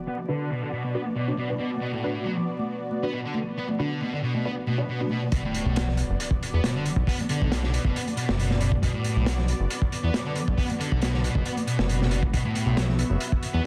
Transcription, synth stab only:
0.28 0.46 D4 medium
0.28 0.46 F#4 medium
0.28 0.46 B4 loud
0.95 1.06 D4 medium
0.95 1.06 F#4 medium
0.95 1.06 B4 medium
1.28 1.45 D4 medium
1.28 1.45 F#4 medium
1.28 1.45 C#5 medium
1.50 1.67 D4 medium
1.50 1.67 F#4 medium
1.50 1.67 B4 medium
2.04 2.15 D4 medium
2.04 2.15 F#4 medium
2.04 2.15 B4 loud
3.03 3.20 D4 medium
3.03 3.20 F#4 medium
3.03 3.20 B4 medium
3.79 3.97 D4 loud
3.79 3.97 F#4 medium
3.79 3.97 B4 loud
4.45 4.57 D4 medium
4.45 4.57 F#4 medium
4.45 4.57 B4 medium
4.78 4.95 D4 medium
4.78 4.95 F#4 medium
4.78 4.95 C#5 medium
5.00 5.17 D4 medium
5.00 5.17 F#4 medium
5.00 5.17 B4 medium

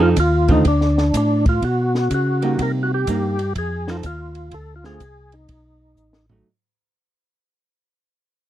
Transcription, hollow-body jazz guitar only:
0.00 0.15 F3 medium
0.00 0.15 C4 medium
0.00 0.15 D#4 medium
0.00 0.15 A4 medium
0.48 0.63 D3 medium
0.48 0.64 A3 medium
0.48 0.64 C4 medium
0.48 0.64 F4 medium
2.42 3.04 G3 medium
2.42 3.04 A#3 medium
2.42 3.04 D#4 medium
3.08 3.36 G3 medium
3.08 3.37 A#3 medium
3.08 3.37 D#4 medium
3.88 4.02 F3 medium
3.88 4.03 C4 medium
3.88 4.03 D#4 medium
3.88 4.03 A4 medium
4.85 4.99 D3 medium
4.85 5.00 A3 medium
4.85 4.99 C4 medium
4.85 5.00 F4 medium
6.31 6.46 F#3 medium
6.31 6.47 A3 medium
6.31 6.47 D#4 medium

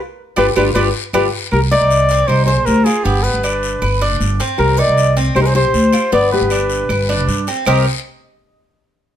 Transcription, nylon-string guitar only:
0.37 0.50 F4 medium
0.37 0.49 G4 medium
0.37 0.50 B4 medium
0.57 0.69 F4 loud
0.57 0.69 G4 loud
0.57 0.69 B4 medium
0.75 0.88 F4 medium
0.75 0.88 G4 medium
0.75 0.88 B4 medium
1.14 1.27 F4 medium
1.14 1.26 G4 medium
1.14 1.27 B4 medium
1.53 1.58 G4 medium
1.71 2.28 A#4 medium
2.28 2.46 G4 medium
2.46 2.66 G#4 medium
2.66 2.86 G4 medium
2.84 3.03 F4 medium
3.03 3.24 D4 medium
3.24 4.01 G4 medium
4.58 4.77 G4 medium
4.77 5.16 A#4 loud
5.36 5.38 G4 medium
5.40 5.45 G4 medium
5.45 5.54 G#4 medium
5.55 6.08 G4 medium
6.13 6.30 B4 medium
6.33 7.44 G4 medium
7.67 7.85 C5 medium

